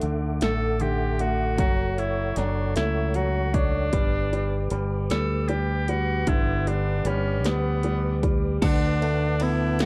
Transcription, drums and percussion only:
0.01 closed hi-hat medium
0.41 snare medium
0.41 closed hi-hat medium
0.80 closed hi-hat medium
1.19 closed hi-hat medium
1.58 kick loud
1.58 closed hi-hat medium
1.98 closed hi-hat soft
2.36 snare soft
2.36 closed hi-hat medium
2.76 snare medium
2.76 closed hi-hat medium
3.14 closed hi-hat soft
3.54 kick medium
3.54 closed hi-hat medium
3.93 kick loud
3.93 closed hi-hat medium
4.33 closed hi-hat soft
4.70 closed hi-hat medium
5.10 snare medium
5.10 closed hi-hat medium
5.49 closed hi-hat medium
5.88 closed hi-hat medium
6.27 kick loud
6.27 closed hi-hat medium
6.67 closed hi-hat medium
7.05 closed hi-hat medium
7.44 snare medium
7.44 closed hi-hat medium
7.83 closed hi-hat soft
8.23 kick medium
8.23 closed hi-hat medium
8.62 kick loud
8.62 crash loud
8.62 ride medium
9.02 ride soft
9.40 ride medium
9.79 snare loud
9.79 ride medium

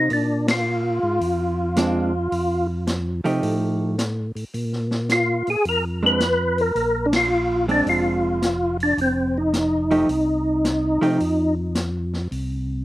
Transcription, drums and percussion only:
0.10 open hi-hat soft
0.48 snare medium
0.48 ride medium
1.21 open hi-hat soft
1.76 snare medium
1.76 closed hi-hat medium
2.32 open hi-hat soft
2.87 snare medium
2.87 closed hi-hat medium
3.25 open hi-hat soft
3.43 open hi-hat soft
3.98 snare medium
3.98 closed hi-hat medium
4.36 open hi-hat soft
4.54 open hi-hat soft
4.73 snare soft
4.91 snare soft
5.09 snare medium
5.09 closed hi-hat soft
5.47 open hi-hat soft
5.65 open hi-hat soft
6.20 snare medium
6.20 closed hi-hat soft
6.58 open hi-hat soft
6.76 open hi-hat soft
7.13 snare medium
7.13 ride medium
7.69 open hi-hat soft
7.87 open hi-hat soft
8.42 snare medium
8.42 closed hi-hat soft
8.80 open hi-hat soft
8.98 open hi-hat soft
9.53 snare medium
9.53 closed hi-hat medium
9.91 open hi-hat soft
10.09 open hi-hat soft
10.65 snare medium
10.65 closed hi-hat soft
11.03 open hi-hat soft
11.20 open hi-hat soft
11.75 snare medium
11.75 closed hi-hat medium
12.13 snare soft
12.32 open hi-hat soft

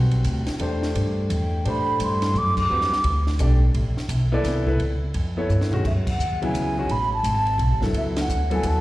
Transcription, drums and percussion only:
0.11 ride soft
0.24 hi-hat pedal soft
0.24 ride medium
0.47 snare soft
0.47 ride soft
0.59 ride medium
0.83 snare soft
0.95 ride medium
1.30 hi-hat pedal soft
1.30 ride medium
1.65 ride medium
2.00 hi-hat pedal medium
2.00 ride medium
2.22 snare soft
2.22 ride medium
2.35 hi-hat pedal soft
2.57 kick medium
2.57 crash medium
2.81 snare soft
2.93 snare soft
3.04 ride medium
3.27 snare soft
3.39 hi-hat pedal soft
3.39 ride medium
3.74 ride medium
3.97 snare soft
4.09 hi-hat pedal medium
4.09 ride medium
4.44 snare soft
4.44 hi-hat pedal soft
4.44 ride medium
4.67 kick medium
4.80 ride medium
5.14 ride medium
5.50 hi-hat pedal medium
5.61 snare medium
5.73 floor tom medium
5.85 kick medium
5.85 crash medium
6.07 kick medium
6.07 crash medium
6.20 hi-hat pedal medium
6.42 ride soft
6.55 hi-hat pedal soft
6.55 ride medium
6.89 ride medium
7.24 hi-hat pedal medium
7.24 ride medium
7.47 ride soft
7.59 ride medium
7.82 snare soft
7.94 ride medium
8.16 snare medium
8.16 ride medium
8.30 hi-hat pedal medium
8.51 ride soft
8.63 hi-hat pedal soft
8.63 ride medium

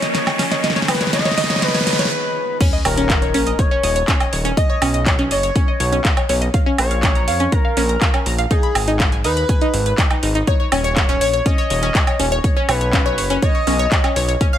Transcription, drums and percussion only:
0.02 snare medium
0.02 closed hi-hat medium
0.15 snare loud
0.15 closed hi-hat medium
0.27 snare medium
0.27 closed hi-hat soft
0.27 high woodblock medium
0.39 snare loud
0.39 open hi-hat loud
0.51 snare medium
0.51 closed hi-hat medium
0.64 snare loud
0.64 closed hi-hat medium
0.70 snare medium
0.76 snare medium
0.76 closed hi-hat soft
0.82 snare medium
0.88 snare loud
0.88 open hi-hat loud
0.88 high woodblock medium
0.95 snare loud
1.01 snare medium
1.01 closed hi-hat medium
1.07 snare medium
1.13 snare loud
1.13 closed hi-hat medium
1.19 snare medium
1.25 snare medium
1.25 closed hi-hat soft
1.31 snare medium
1.38 snare loud
1.38 open hi-hat loud
1.44 snare loud
1.50 snare loud
1.50 closed hi-hat medium
1.56 snare loud
1.62 snare loud
1.62 closed hi-hat medium
1.68 snare medium
1.75 snare loud
1.75 open hi-hat medium
1.81 snare medium
1.87 snare loud
1.87 open hi-hat loud
1.93 snare loud
1.99 snare loud
1.99 closed hi-hat medium
2.05 snare loud
2.61 kick loud
2.61 closed hi-hat medium
2.61 crash loud
2.85 open hi-hat loud
2.85 high woodblock medium
2.97 closed hi-hat medium
3.10 kick loud
3.10 clap loud
3.10 closed hi-hat medium
3.22 closed hi-hat soft
3.34 open hi-hat loud
3.47 closed hi-hat medium
3.59 kick loud
3.59 closed hi-hat medium
3.83 open hi-hat loud
3.96 closed hi-hat medium
4.08 kick loud
4.08 clap loud
4.08 closed hi-hat medium
4.20 closed hi-hat soft
4.20 high woodblock medium
4.33 open hi-hat loud
4.45 closed hi-hat medium
4.57 kick loud
4.57 closed hi-hat medium
4.82 open hi-hat loud
4.82 high woodblock medium
4.94 closed hi-hat medium
5.06 kick loud
5.06 clap loud
5.06 closed hi-hat medium
5.19 closed hi-hat soft
5.31 open hi-hat loud
5.43 closed hi-hat medium
5.56 kick loud
5.56 closed hi-hat medium
5.80 open hi-hat loud
5.92 closed hi-hat medium
6.05 kick loud
6.05 clap loud
6.05 closed hi-hat medium
6.17 closed hi-hat soft
6.17 high woodblock medium
6.29 open hi-hat loud
6.42 closed hi-hat medium
6.54 kick loud
6.54 closed hi-hat medium
6.78 open hi-hat loud
6.78 high woodblock medium
6.91 closed hi-hat medium
7.03 kick loud
7.03 clap loud
7.03 closed hi-hat medium
7.15 closed hi-hat soft
7.28 open hi-hat loud
7.40 closed hi-hat medium
7.52 kick loud
7.52 closed hi-hat medium
7.77 open hi-hat loud
7.89 closed hi-hat medium
8.01 kick loud
8.01 clap loud
8.01 closed hi-hat medium
8.14 closed hi-hat soft
8.14 high woodblock medium
8.26 open hi-hat loud
8.38 closed hi-hat medium
8.51 kick loud
8.51 closed hi-hat medium
8.63 closed hi-hat soft
8.75 open hi-hat loud
8.75 high woodblock medium
8.88 closed hi-hat medium
9.00 kick loud
9.00 clap loud
9.00 closed hi-hat medium
9.12 closed hi-hat soft
9.24 open hi-hat loud
9.37 closed hi-hat medium
9.49 kick loud
9.49 closed hi-hat medium
9.61 closed hi-hat soft
9.74 open hi-hat loud
9.86 closed hi-hat soft
9.98 kick loud
9.98 clap loud
9.98 closed hi-hat medium
10.11 closed hi-hat soft
10.11 high woodblock medium
10.23 open hi-hat loud
10.35 closed hi-hat soft
10.47 kick loud
10.47 closed hi-hat medium
10.72 open hi-hat loud
10.72 high woodblock medium
10.84 closed hi-hat medium
10.96 kick loud
10.96 clap loud
10.96 closed hi-hat medium
11.09 closed hi-hat soft
11.21 open hi-hat loud
11.33 closed hi-hat soft
11.46 kick loud
11.46 closed hi-hat medium
11.70 open hi-hat loud
11.83 closed hi-hat medium
11.95 kick loud
11.95 clap loud
11.95 closed hi-hat medium
12.07 closed hi-hat soft
12.07 high woodblock medium
12.20 open hi-hat loud
12.32 closed hi-hat medium
12.44 kick loud
12.44 closed hi-hat medium
12.69 open hi-hat loud
12.69 high woodblock medium
12.81 closed hi-hat medium
12.93 kick loud
12.93 clap loud
12.93 closed hi-hat medium
13.06 closed hi-hat soft
13.18 open hi-hat loud
13.30 closed hi-hat medium
13.42 kick loud
13.42 closed hi-hat medium
13.67 open hi-hat loud
13.79 closed hi-hat medium
13.92 kick loud
13.92 clap loud
13.92 closed hi-hat medium
14.04 closed hi-hat soft
14.04 high woodblock medium
14.16 open hi-hat loud
14.29 closed hi-hat medium
14.41 kick loud
14.41 closed hi-hat medium

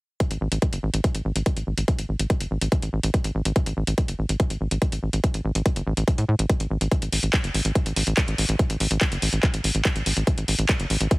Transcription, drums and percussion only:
0.20 kick loud
0.20 closed hi-hat medium
0.31 closed hi-hat medium
0.52 closed hi-hat medium
0.62 kick loud
0.62 closed hi-hat medium
0.73 closed hi-hat medium
0.94 closed hi-hat medium
1.04 kick loud
1.04 closed hi-hat medium
1.15 closed hi-hat medium
1.36 closed hi-hat medium
1.46 kick loud
1.46 closed hi-hat medium
1.57 closed hi-hat medium
1.78 closed hi-hat medium
1.88 kick loud
1.88 closed hi-hat medium
1.99 closed hi-hat medium
2.19 closed hi-hat medium
2.30 kick loud
2.30 closed hi-hat medium
2.40 closed hi-hat medium
2.61 closed hi-hat medium
2.72 kick loud
2.72 closed hi-hat medium
2.82 closed hi-hat medium
3.03 closed hi-hat medium
3.14 kick loud
3.14 closed hi-hat medium
3.24 closed hi-hat medium
3.45 closed hi-hat medium
3.56 kick loud
3.56 closed hi-hat medium
3.66 closed hi-hat medium
3.87 closed hi-hat medium
3.98 kick loud
3.98 closed hi-hat medium
4.08 closed hi-hat medium
4.29 closed hi-hat medium
4.40 kick loud
4.40 closed hi-hat medium
4.50 closed hi-hat medium
4.71 closed hi-hat medium
4.82 kick loud
4.82 closed hi-hat medium
4.92 closed hi-hat medium
5.13 closed hi-hat medium
5.24 kick loud
5.24 closed hi-hat medium
5.34 closed hi-hat medium
5.55 closed hi-hat medium
5.66 kick loud
5.66 closed hi-hat medium
5.76 closed hi-hat medium
5.97 closed hi-hat medium
6.08 kick loud
6.08 closed hi-hat medium
6.18 closed hi-hat medium
6.39 closed hi-hat medium
6.50 kick loud
6.50 closed hi-hat medium
6.60 closed hi-hat medium
6.81 closed hi-hat medium
6.91 kick loud
6.91 closed hi-hat medium
7.02 closed hi-hat medium
7.13 open hi-hat loud
7.23 closed hi-hat medium
7.33 kick loud
7.33 clap loud
7.33 closed hi-hat medium
7.44 closed hi-hat medium
7.54 open hi-hat loud
7.65 closed hi-hat medium
7.75 kick loud
7.75 closed hi-hat medium
7.86 closed hi-hat medium
7.96 open hi-hat loud
8.07 closed hi-hat medium
8.17 kick loud
8.17 clap loud
8.17 closed hi-hat medium
8.28 closed hi-hat medium
8.38 open hi-hat loud
8.49 closed hi-hat medium
8.59 kick loud
8.59 closed hi-hat medium
8.70 closed hi-hat medium
8.80 open hi-hat loud
8.91 closed hi-hat medium
9.01 kick loud
9.01 clap loud
9.01 closed hi-hat medium
9.12 closed hi-hat medium
9.22 open hi-hat loud
9.33 closed hi-hat medium
9.43 kick loud
9.43 clap medium
9.43 closed hi-hat medium
9.54 closed hi-hat medium
9.64 open hi-hat loud
9.75 closed hi-hat medium
9.85 kick loud
9.85 clap loud
9.85 closed hi-hat medium
9.96 closed hi-hat medium
10.06 open hi-hat loud
10.17 closed hi-hat medium
10.27 kick loud
10.27 closed hi-hat medium
10.38 closed hi-hat medium
10.48 open hi-hat loud
10.59 closed hi-hat medium
10.69 kick loud
10.69 clap loud
10.69 closed hi-hat medium
10.80 closed hi-hat medium
10.90 open hi-hat loud
11.01 closed hi-hat medium
11.11 kick loud
11.11 closed hi-hat medium

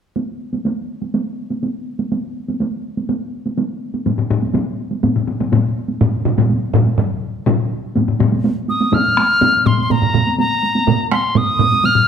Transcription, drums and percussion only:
0.16 taiko high medium
0.53 taiko high soft
0.65 taiko high medium
1.02 taiko high soft
1.14 taiko high medium
1.50 taiko high soft
1.63 taiko high soft
1.99 taiko high soft
2.12 taiko high medium
2.48 taiko high soft
2.60 taiko high medium
2.97 taiko high soft
3.09 taiko high medium
3.46 taiko high soft
3.58 taiko high medium
3.94 taiko high soft
4.06 taiko low-mid soft
4.06 taiko high medium
4.18 taiko low-mid medium
4.30 taiko low-mid medium
4.42 taiko high soft
4.54 taiko low-mid medium
4.54 taiko high medium
4.91 taiko high soft
5.03 taiko low-mid medium
5.03 taiko high medium
5.16 taiko low-mid medium
5.27 taiko low-mid soft
5.40 taiko low-mid medium
5.40 taiko high soft
5.52 taiko low-mid medium
5.52 taiko high medium
5.89 taiko high soft
6.01 taiko low-mid medium
6.01 taiko mid medium
6.01 taiko high medium
6.25 taiko low-mid medium
6.25 taiko mid medium
6.38 taiko low-mid medium
6.38 taiko mid medium
6.38 taiko high medium
6.49 taiko high medium
6.74 taiko low-mid medium
6.74 taiko mid medium
6.86 taiko high soft
6.98 taiko low-mid medium
6.98 taiko mid medium
7.47 taiko low-mid medium
7.47 taiko mid medium
7.96 taiko low-mid medium
7.96 taiko high medium
8.08 taiko low-mid medium
8.20 taiko low-mid medium
8.20 taiko high medium
8.32 taiko high medium
8.44 taiko high medium
8.68 taiko high soft
8.81 taiko high medium
8.93 taiko low-mid medium
8.93 taiko high medium
9.17 taiko rim medium
9.17 taiko high medium
9.41 taiko low-mid medium
9.41 taiko high medium
9.66 taiko low-mid medium
9.66 taiko high medium
9.78 taiko high medium
9.90 taiko mid medium
9.90 taiko high medium
10.02 taiko mid medium
10.14 taiko mid medium
10.14 taiko high medium
10.27 taiko high medium
10.39 taiko high medium
10.63 taiko high soft
10.75 taiko high medium
10.87 taiko mid medium
10.87 taiko high medium
11.11 taiko rim medium
11.11 taiko high medium
11.35 taiko mid medium
11.35 taiko high medium
11.59 taiko mid medium
11.59 taiko high soft
11.72 taiko high soft
11.83 taiko low-mid medium
11.83 taiko high medium
11.95 taiko low-mid medium

